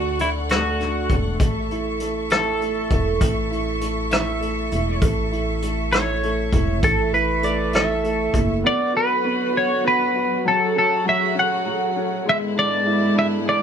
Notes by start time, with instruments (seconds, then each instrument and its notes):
Already playing: upright bass D2, upright piano D3 A3, clean electric guitar F#4, string section A4 D5 F#5 C#6
0.19 upright piano D3, clean electric guitar E4, closed hi-hat
0.49 upright piano A3, clean electric guitar F#4, cross-stick, closed hi-hat
0.80 upright piano D3, cross-stick, closed hi-hat
1.10 upright bass E1, upright piano A3, kick, closed hi-hat
1.40 upright bass A1, upright piano A3, string section E5 C#6, kick, closed hi-hat
1.71 upright piano E4, closed hi-hat
2.00 upright piano A3, closed hi-hat
2.30 upright piano E4, clean electric guitar A4, cross-stick, closed hi-hat
2.61 upright piano A3, closed hi-hat
2.91 upright bass E1, upright piano E4, kick, closed hi-hat
3.21 upright bass A1, upright piano A3, kick, closed hi-hat
3.51 upright piano E4, closed hi-hat
3.81 upright piano A3, closed hi-hat
4.11 upright piano E4, clean electric guitar E5, cross-stick, closed hi-hat
4.41 upright piano A3, closed hi-hat
4.71 upright bass E1, upright piano E4, closed hi-hat
5.01 upright bass A1, upright piano A3, kick, closed hi-hat
5.32 upright piano E4, closed hi-hat
5.62 upright piano A3, closed hi-hat
5.92 upright piano E4, clean electric guitar C#5, cross-stick, closed hi-hat
6.23 upright piano A3, closed hi-hat
6.53 upright bass E1, upright piano E4, kick, closed hi-hat
6.83 upright bass A1, upright piano A3, clean electric guitar A4, kick, closed hi-hat
7.13 upright piano E4, clean electric guitar B4, closed hi-hat
7.43 upright piano A3, clean electric guitar D5, closed hi-hat
7.73 upright piano E4, clean electric guitar A4 E5, cross-stick, closed hi-hat
8.04 upright piano A3, closed hi-hat
8.33 upright bass F#1, upright piano E4, kick, closed hi-hat
8.63 string section D3 F#3 B3 F#4, upright piano B3, clean electric guitar D5
8.94 upright piano F#4, clean electric guitar B4
9.25 upright piano B3
9.53 upright piano F#4
9.57 clean electric guitar C#5
9.84 upright piano B3, clean electric guitar B4
10.15 upright piano F#4
10.45 string section C#3 A3 F#4, upright piano F#3, clean electric guitar A4
10.76 upright piano C#4, clean electric guitar A4
11.06 upright piano F#3, clean electric guitar E5
11.35 upright piano C#4
11.39 clean electric guitar F#5
11.66 upright piano F#3
11.96 upright piano C#4
12.24 string section G#2 D3 G#3 B3 E4, upright piano G#3
12.29 clean electric guitar E5
12.56 upright piano D4, clean electric guitar D5
12.86 upright piano E4
13.15 upright piano D4, clean electric guitar E5
13.46 upright piano G#4, clean electric guitar D5